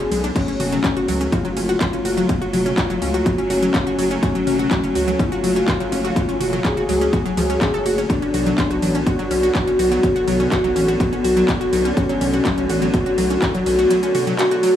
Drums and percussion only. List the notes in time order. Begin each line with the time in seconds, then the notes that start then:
0.12 open hi-hat, ride
0.24 closed hi-hat
0.36 kick, closed hi-hat, crash, ride
0.48 closed hi-hat
0.60 open hi-hat, mid tom, ride
0.72 closed hi-hat, mid tom
0.84 kick, clap, closed hi-hat, ride
0.97 closed hi-hat
1.08 open hi-hat, ride
1.21 closed hi-hat
1.32 kick, closed hi-hat, ride
1.45 closed hi-hat
1.57 open hi-hat, ride
1.69 closed hi-hat
1.81 kick, clap, closed hi-hat, ride
1.93 closed hi-hat
2.05 open hi-hat, ride
2.17 closed hi-hat
2.29 kick, closed hi-hat, ride
2.42 closed hi-hat
2.54 open hi-hat, mid tom, ride
2.66 closed hi-hat, mid tom
2.78 kick, clap, closed hi-hat, ride
2.90 closed hi-hat
3.02 open hi-hat, ride
3.14 closed hi-hat
3.26 kick, closed hi-hat, ride
3.38 closed hi-hat
3.50 open hi-hat, ride
3.63 closed hi-hat
3.74 kick, clap, closed hi-hat, ride
3.87 closed hi-hat
3.99 open hi-hat, ride
4.11 closed hi-hat
4.23 kick, closed hi-hat, ride
4.35 closed hi-hat
4.47 open hi-hat, mid tom, ride
4.59 closed hi-hat, mid tom
4.71 kick, clap, closed hi-hat, ride
4.84 closed hi-hat
4.95 open hi-hat, ride
5.08 closed hi-hat
5.19 kick, closed hi-hat, ride
5.32 closed hi-hat
5.44 open hi-hat, ride
5.56 closed hi-hat
5.68 kick, clap, closed hi-hat, ride
5.80 closed hi-hat
5.92 open hi-hat, ride
6.05 closed hi-hat
6.16 kick, closed hi-hat, ride
6.29 closed hi-hat
6.41 open hi-hat, mid tom, ride
6.53 closed hi-hat, mid tom
6.65 kick, clap, closed hi-hat, ride
6.77 closed hi-hat
6.89 open hi-hat, ride
7.01 closed hi-hat
7.13 kick, closed hi-hat, ride
7.26 closed hi-hat
7.37 open hi-hat, ride
7.50 closed hi-hat
7.61 kick, clap, closed hi-hat, ride
7.74 closed hi-hat
7.86 open hi-hat, ride
7.98 closed hi-hat
8.10 kick, closed hi-hat, ride
8.22 closed hi-hat
8.34 open hi-hat, mid tom, ride
8.46 closed hi-hat, mid tom
8.58 kick, clap, closed hi-hat, ride
8.71 closed hi-hat
8.82 open hi-hat, ride
8.95 closed hi-hat
9.07 kick, closed hi-hat, ride
9.19 closed hi-hat
9.31 open hi-hat, ride
9.43 closed hi-hat
9.55 kick, clap, closed hi-hat, ride
9.67 closed hi-hat
9.79 open hi-hat, ride
9.92 closed hi-hat
10.03 kick, closed hi-hat, ride
10.16 closed hi-hat
10.28 open hi-hat, mid tom, ride
10.40 closed hi-hat, mid tom
10.52 kick, clap, closed hi-hat, ride
10.64 closed hi-hat
10.76 open hi-hat, ride
10.88 closed hi-hat
11.00 kick, closed hi-hat, ride
11.13 closed hi-hat
11.24 open hi-hat, ride
11.37 closed hi-hat
11.49 kick, clap, closed hi-hat, ride
11.61 closed hi-hat
11.73 open hi-hat, ride
11.85 closed hi-hat
11.97 kick, closed hi-hat, ride
12.09 closed hi-hat
12.21 open hi-hat, mid tom, ride
12.34 closed hi-hat, mid tom
12.45 kick, clap, closed hi-hat, ride
12.58 closed hi-hat
12.70 open hi-hat, ride
12.82 closed hi-hat
12.94 kick, closed hi-hat, ride
13.06 closed hi-hat
13.18 open hi-hat, ride
13.30 closed hi-hat
13.42 kick, clap, closed hi-hat, ride
13.55 closed hi-hat
13.66 open hi-hat, ride
13.79 closed hi-hat
13.91 closed hi-hat, ride
14.03 closed hi-hat
14.15 open hi-hat, mid tom, ride
14.27 closed hi-hat, mid tom
14.39 clap, closed hi-hat, ride
14.51 closed hi-hat
14.63 open hi-hat, ride